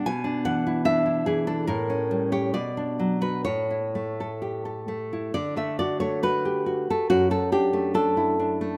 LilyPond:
\new Staff \with { instrumentName = "Nylon-string guitar" } { \time 2/4 \key d \major \tempo 4 = 68 << { gis''8 fis''8 e''8 gis'16 a'16 | bes'8. cis''16 d''8. b'16 | cis''4 r4 | d''16 e''16 d''16 cis''16 b'8. a'16 |
fis'16 a'16 g'8 a'4 | } \\ { b,16 d'16 e16 e'16 d'16 e'16 e16 d'16 | a,16 cis'16 g16 g'16 b,16 d'16 fis16 fis'16 | a,16 e'16 a16 a'16 g'16 a'16 a16 e'16 | d16 a16 fis'16 a16 fis'16 g'16 fis'16 a16 |
fis,16 a16 d'16 a16 d'16 e'16 d'16 a16 | } >> }